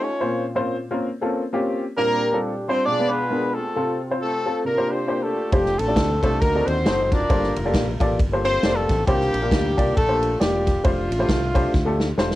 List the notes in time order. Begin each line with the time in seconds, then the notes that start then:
Already playing: D#4 A4
0.03 C#4 F4 C#5
0.20 A#2 A#3 C4 C#4 F4 C5
0.55 A#3 C4 C#4 F4 C5
0.91 A#3 C4 C#4 F4 A#4
1.21 A#3 C4 C#4 F4 A4
1.53 A#3 C4 C#4 F4 G4
1.97 A#2 G3 A#3 C4 D4 F4 G4 A#4
2.32 G3 C4 D4 F4 A4
2.68 G3 C4 D4 F4 C5
2.85 B2 D4 F4 G#4 D5
2.99 G#3 B3 D4 F4 B4
3.10 B3 D4 G#4 B4
3.30 G#3 B3 D4 F4 A#4
3.55 A3 C4 F4 A4
3.76 C3 C4 F4 A4
4.11 C4 F4 C5
4.20 A3 C4 F4 A4
4.46 C4 F4 A4
4.64 C3 A#3 D4 F4 A#4
4.77 A#3 D4 F4 G4 C5
4.91 C4 F4 G4 C5
5.07 A#3 D4 F4 G4 C5
5.22 A3 D4 F4 A4
5.52 F1 G3 A3 C4 D4 F4 G4 C5, kick, ride
5.66 snare
5.79 A1 A3 C4 D4 A4, ride
5.87 A3 D4 F4 G4 D5
5.96 D2, kick, snare, ride
6.23 C2 A3 D4 F4 G4 A4 C5, kick, ride
6.41 D2 D3 A#3 D#4 F#4 A#4, kick, ride
6.55 C4 D#4 F#4 A4 D5
6.67 D#2 C4 D#4 F#4 C5, ride
6.86 F#1 C4 D#4 F#4 A4 C5, snare, ride
7.12 D4 F4 A#4 D5, kick, snare, ride
7.29 G1 G2 A#3 F4 G4 A4 C5, kick, ride
7.43 snare
7.56 F1, ride
7.65 A#3 F4 G4 A4 D5
7.74 A#1, kick, snare, ride
8.00 A1 A#3 F4 G4 A4 D5, kick, ride
8.19 G1, kick, ride
8.32 A#3 F4 G4 A4 C5
8.44 C4 F4 A4 C5, ride
8.63 F1 A#3 F4 G4 A4 D5, snare, ride
8.75 A3 C4 F4 A4
8.89 A1, kick, snare, ride
9.07 C2 C3 G3 A#3 D4 F4 G4 C5, kick, ride
9.20 snare
9.34 A#1, ride
9.42 A#3 D4 F4 G4 A#4
9.51 D2, kick, snare, ride
9.77 C2 A#3 D4 F4 G4 D5, kick, ride
9.97 A#1 A3 D4 F4 A4, kick, ride
10.08 A#3 D4 F4 G4 C5
10.22 ride
10.40 E1 G3 A#3 D4 F4 G4 D5, snare, ride
10.67 kick, snare, ride
10.84 F1 F3 A3 D4 F4 G4 C5, kick, ride
11.11 A1, ride
11.19 A3 D4 F4 G4 C5
11.29 C2, kick, snare, ride
11.54 A3 D4 F4 G4 C5, kick, ride
11.74 D2, kick, snare
11.85 A3 D4 F4 G4 A4
12.00 snare
12.18 E1 A3 D4 F4 G4 C5, snare
12.31 snare